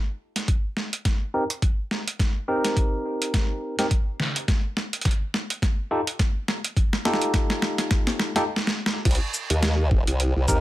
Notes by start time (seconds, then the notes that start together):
0.36 snare, closed hi-hat
0.48 kick, closed hi-hat
0.77 snare
0.93 closed hi-hat
1.05 kick, snare, closed hi-hat
1.34 C4 D#4 G4 A#4
1.50 closed hi-hat
1.62 kick, closed hi-hat
1.91 snare
2.08 closed hi-hat
2.19 kick, snare, closed hi-hat
2.48 C4 D#4 G4 A#4
2.65 snare, closed hi-hat
2.77 kick, closed hi-hat
3.22 closed hi-hat
3.34 kick, snare, closed hi-hat
3.79 C4 D#4 G4 A#4, snare, closed hi-hat
3.91 kick, closed hi-hat
4.20 snare
4.36 closed hi-hat
4.48 kick, snare, closed hi-hat
4.77 snare
4.93 closed hi-hat
5.01 kick, snare, closed hi-hat
5.05 closed hi-hat
5.11 closed hi-hat
5.34 snare
5.50 closed hi-hat
5.62 kick, snare, closed hi-hat
5.91 D#4 F4 G4 A4
6.07 closed hi-hat
6.19 kick, snare, closed hi-hat
6.48 snare
6.64 closed hi-hat
6.77 kick, closed hi-hat
6.93 snare
7.05 D#4 F4 G4 A4, snare
7.14 snare
7.22 closed hi-hat
7.34 kick, snare, closed hi-hat
7.50 snare
7.62 snare
7.78 snare, closed hi-hat
7.91 kick, snare, closed hi-hat
8.07 snare
8.19 snare
8.36 D#4 F4 G4 A4, snare, closed hi-hat
8.56 snare
8.67 snare
8.86 snare
9.05 C2, kick, closed hi-hat, crash
9.11 closed hi-hat
9.15 closed hi-hat
9.34 shaker
9.50 D#2, closed hi-hat
9.63 snare, closed hi-hat
9.91 kick
10.07 C2, closed hi-hat
10.20 closed hi-hat
10.36 C2
10.48 D#2 C4 D#4 G4 A#4, kick, shaker